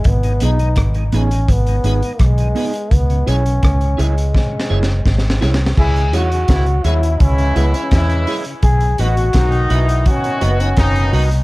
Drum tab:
CC |------------------------------------------------|------------------------------------------------|x-----------------------------------------------|------------------------------------------------|
HH |x--x--x--x--x--x--x--x--x--x--x--x--x--x--o--x--|x--x--x--x--x--x--x--x--------------------------|---x--x--x--x--x--x--x--x--x--x--x--x--x--o--x--|x--x--x--x--x--x--x--x--x--x--x--x--x--x--o--x--|
SD |------------r-----------------------r-----------|------------r-----------o---o---o---o-o-o-o-o-o-|------------o-----------------------o-----------|------------o-----------------------o-----------|
BD |o-----------o-----------o-----------o-----------|o-----------o-----------o-----------o-----------|o-----------o-----------o-----------o-----------|o-----------o-----------o-----------o-----------|